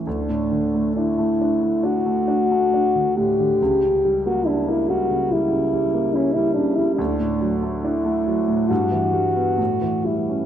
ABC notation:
X:1
M:4/4
L:1/16
Q:1/4=69
K:D
V:1 name="French horn"
D4 E4 F6 G2- | G3 F D E F2 E4 C E D E | D3 z E4 F6 E2 |]
V:2 name="Grand piano" clef=bass
D,, A,, D, A, D A, D A, D A, D A, D D, A,, D, | C,, C, G, ^A, E A, G, C, G, C, G, A, E G, C, G, | D,, A,, F, A, D A, F, A,, G,, E, G, B, A,, E, G, C |]